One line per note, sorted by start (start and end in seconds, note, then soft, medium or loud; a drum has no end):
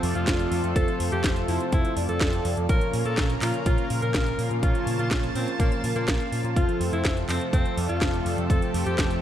0.00 0.12 F2 medium
0.00 2.65 C3 medium
0.00 6.52 F3 medium
0.00 0.73 F3 medium
0.00 2.65 A3 medium
0.00 0.73 C4 medium
0.00 2.65 F4 medium
0.00 0.73 F4 medium
0.00 2.65 A4 loud
0.00 0.73 A4 medium
0.00 0.73 D5 loud
0.00 open hi-hat loud
0.15 0.24 F2 medium
0.15 0.66 F4 loud
0.15 closed hi-hat soft
0.27 0.45 F1 medium
0.27 kick loud
0.27 snare loud
0.27 clap loud
0.27 closed hi-hat loud
0.40 closed hi-hat soft
0.52 0.60 F2 loud
0.52 open hi-hat medium
0.64 0.72 F2 medium
0.64 closed hi-hat soft
0.76 0.84 F1 loud
0.76 1.45 F3 loud
0.76 1.45 C4 medium
0.76 1.45 F4 medium
0.76 1.45 A4 medium
0.76 1.00 A4 loud
0.76 1.45 C5 loud
0.76 kick loud
0.76 closed hi-hat medium
0.88 closed hi-hat soft
1.00 1.09 F2 medium
1.00 open hi-hat loud
1.12 1.21 F2 medium
1.12 1.36 G4 loud
1.12 closed hi-hat soft
1.24 1.41 F1 medium
1.24 kick loud
1.24 snare loud
1.24 clap loud
1.24 closed hi-hat medium
1.36 closed hi-hat soft
1.48 1.57 F2 medium
1.48 1.94 F3 medium
1.48 1.94 C4 medium
1.48 1.65 E4 medium
1.48 1.94 F4 medium
1.48 1.94 A4 medium
1.48 1.94 C5 loud
1.48 open hi-hat medium
1.60 closed hi-hat soft
1.72 1.81 F1 loud
1.72 1.97 E4 loud
1.72 kick loud
1.72 closed hi-hat medium
1.85 closed hi-hat soft
1.97 2.05 F2 medium
1.97 2.66 F3 medium
1.97 2.66 C4 medium
1.97 2.66 F4 medium
1.97 2.66 A4 medium
1.97 2.66 D5 loud
1.97 open hi-hat loud
2.09 2.17 F2 medium
2.09 2.60 A4 loud
2.09 closed hi-hat soft
2.21 2.38 F1 medium
2.21 kick loud
2.21 snare loud
2.21 clap medium
2.21 closed hi-hat medium
2.33 closed hi-hat soft
2.45 2.54 F2 loud
2.45 open hi-hat medium
2.57 2.66 F2 medium
2.57 closed hi-hat soft
2.69 2.78 A#1 medium
2.69 3.39 A#2 loud
2.69 6.52 C#3 medium
2.69 6.52 A#3 medium
2.69 3.39 C#4 medium
2.69 8.46 F4 medium
2.69 3.39 F4 medium
2.69 4.61 A#4 medium
2.69 3.39 A#4 medium
2.69 2.94 A#4 loud
2.69 3.39 C#5 loud
2.69 kick loud
2.69 closed hi-hat medium
2.81 closed hi-hat soft
2.93 3.02 A#2 medium
2.93 open hi-hat loud
3.05 3.14 A#2 loud
3.05 3.30 A4 loud
3.05 closed hi-hat soft
3.18 3.35 A#1 medium
3.18 kick loud
3.18 snare loud
3.18 clap medium
3.18 closed hi-hat medium
3.30 closed hi-hat soft
3.42 3.50 A#2 medium
3.42 3.87 A#2 medium
3.42 3.87 C#4 medium
3.42 3.87 F4 medium
3.42 3.58 F4 medium
3.42 3.87 A#4 medium
3.42 3.87 C#5 loud
3.42 clap medium
3.42 open hi-hat medium
3.54 closed hi-hat soft
3.66 3.75 A#1 loud
3.66 3.91 F4 loud
3.66 kick loud
3.66 closed hi-hat medium
3.78 closed hi-hat soft
3.90 4.60 A#2 medium
3.90 3.99 A#2 medium
3.90 4.60 C#4 medium
3.90 4.60 F4 medium
3.90 4.60 A#4 medium
3.90 4.60 F5 loud
3.90 open hi-hat loud
4.02 4.11 A#2 medium
4.02 4.53 A#4 loud
4.02 closed hi-hat soft
4.14 4.32 A#1 medium
4.14 kick loud
4.14 snare loud
4.14 clap medium
4.14 closed hi-hat medium
4.27 closed hi-hat soft
4.38 4.47 A#2 loud
4.38 open hi-hat medium
4.51 4.59 A#2 medium
4.51 closed hi-hat soft
4.63 4.71 A#1 loud
4.63 5.32 A#2 medium
4.63 5.32 C#4 medium
4.63 5.32 F4 medium
4.63 4.87 F4 loud
4.63 5.32 A#4 medium
4.63 5.32 C#5 loud
4.63 6.54 A5 medium
4.63 kick loud
4.63 closed hi-hat medium
4.75 closed hi-hat soft
4.87 4.96 A#2 medium
4.87 open hi-hat loud
4.99 5.08 A#2 medium
4.99 5.24 F4 loud
4.99 closed hi-hat soft
5.11 5.28 A#1 medium
5.11 kick loud
5.11 snare loud
5.11 clap medium
5.11 closed hi-hat medium
5.24 closed hi-hat soft
5.35 5.44 A#2 medium
5.35 5.81 A#2 medium
5.35 5.52 C4 medium
5.35 5.81 C#4 medium
5.35 5.81 F4 medium
5.35 5.81 A#4 medium
5.35 5.81 C#5 loud
5.35 open hi-hat medium
5.48 closed hi-hat soft
5.60 5.68 A#1 medium
5.60 5.84 A#3 loud
5.60 kick loud
5.60 closed hi-hat medium
5.72 closed hi-hat soft
5.84 5.92 A#2 medium
5.84 6.53 A#2 medium
5.84 6.53 C#4 medium
5.84 6.53 F4 medium
5.84 6.53 A#4 medium
5.84 6.53 F5 loud
5.84 open hi-hat loud
5.96 6.04 A#2 medium
5.96 6.47 A#3 loud
5.96 closed hi-hat soft
6.08 6.17 A#1 medium
6.08 kick loud
6.08 snare loud
6.08 clap medium
6.08 closed hi-hat medium
6.20 closed hi-hat soft
6.32 6.41 A#2 medium
6.32 open hi-hat medium
6.44 6.53 A#2 medium
6.44 closed hi-hat soft
6.56 6.65 F1 loud
6.56 9.22 C3 medium
6.56 9.22 F3 medium
6.56 7.26 F3 medium
6.56 9.22 A3 medium
6.56 7.26 C4 medium
6.56 7.26 F4 medium
6.56 6.81 F4 loud
6.56 9.22 A4 medium
6.56 7.26 A4 medium
6.56 7.26 C5 loud
6.56 kick loud
6.56 closed hi-hat medium
6.69 closed hi-hat soft
6.80 6.89 F2 medium
6.80 open hi-hat loud
6.92 7.01 F2 medium
6.92 7.17 E4 loud
6.92 closed hi-hat soft
7.05 7.22 F1 medium
7.05 kick loud
7.05 snare loud
7.05 clap medium
7.05 closed hi-hat medium
7.17 closed hi-hat soft
7.29 7.37 F2 medium
7.29 7.74 F3 medium
7.29 7.74 C4 medium
7.29 7.45 C4 medium
7.29 7.74 F4 medium
7.29 7.74 A4 medium
7.29 7.74 C5 loud
7.29 clap medium
7.29 open hi-hat medium
7.41 closed hi-hat soft
7.53 7.62 F1 loud
7.53 7.78 C4 loud
7.53 kick loud
7.53 closed hi-hat medium
7.65 closed hi-hat soft
7.77 7.86 F2 medium
7.77 8.47 F3 medium
7.77 8.47 C4 medium
7.77 8.47 F4 medium
7.77 8.47 A4 medium
7.77 8.47 D5 loud
7.77 open hi-hat loud
7.89 7.98 F2 medium
7.89 8.40 F4 loud
7.89 closed hi-hat soft
8.01 8.19 F1 medium
8.01 kick loud
8.01 snare loud
8.01 clap medium
8.01 closed hi-hat medium
8.14 closed hi-hat soft
8.26 8.34 F2 loud
8.26 open hi-hat medium
8.38 8.46 F2 medium
8.38 closed hi-hat soft
8.50 8.59 F1 loud
8.50 9.20 F3 medium
8.50 9.20 C4 medium
8.50 9.20 F4 medium
8.50 9.22 G4 medium
8.50 9.20 A4 medium
8.50 8.75 A4 loud
8.50 9.20 C5 loud
8.50 kick loud
8.50 closed hi-hat medium
8.62 closed hi-hat soft
8.74 8.83 F2 medium
8.74 open hi-hat loud
8.86 8.95 F2 medium
8.86 9.11 G4 loud
8.86 closed hi-hat soft
8.98 9.16 F1 medium
8.98 kick loud
8.98 snare loud
8.98 clap medium
8.98 closed hi-hat medium
9.11 closed hi-hat soft